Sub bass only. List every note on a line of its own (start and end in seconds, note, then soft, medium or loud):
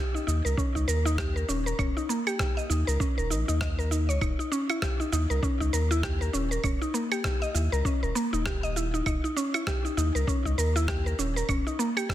0.28 0.41 D#2 medium
0.45 0.55 C#2 medium
0.75 0.85 C#2 loud
0.88 1.44 D#2 medium
1.49 1.74 D#1 medium
1.79 1.93 D#1 loud
2.70 2.84 D#2 medium
2.88 2.98 C#2 medium
3.18 3.32 D#1 medium
3.31 3.45 A#1 medium
3.49 4.11 D#2 medium
4.09 4.19 C#2 medium
4.22 4.35 D#1 loud
5.13 5.26 D#2 medium
5.30 5.40 C#2 medium
5.60 5.70 C#2 loud
5.73 6.29 D#2 medium
6.34 6.59 D#1 medium
6.64 6.78 D#1 loud
7.55 7.69 D#2 medium
7.72 7.82 C#2 medium
8.03 8.13 D#1 medium
8.33 9.02 D#1 medium
9.06 9.20 D#1 loud
9.97 10.11 D#2 medium
10.15 10.25 C#2 medium
10.45 10.55 C#2 loud
10.58 11.14 D#2 medium
11.18 11.43 D#1 medium
11.49 11.63 D#1 loud